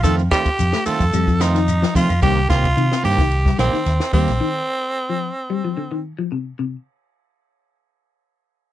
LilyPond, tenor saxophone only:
\new Staff \with { instrumentName = "Tenor saxophone" } { \time 4/4 \key f \mixolydian \tempo 4 = 110 a'8 g'4 a'4 ees'4 f'8 | g'8 f'4 g'4 c'4 c'8~ | c'2. r4 | r1 | }